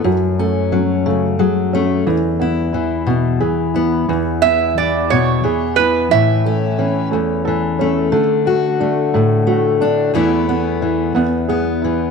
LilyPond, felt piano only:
\new Staff \with { instrumentName = "Felt piano" } { \time 6/8 \key e \mixolydian \tempo 4. = 59 fis8 a8 cis'8 a8 gis'8 cis'8 | e8 b8 e'8 b8 gis'8 e'8 | e8 b8 e'8 b8 gis'8 e'8 | e8 a8 cis'8 a8 a'8 cis'8 |
a8 a8 d'8 a8 fis'8 d'8 | e8 b8 e'8 b8 gis'8 e'8 | }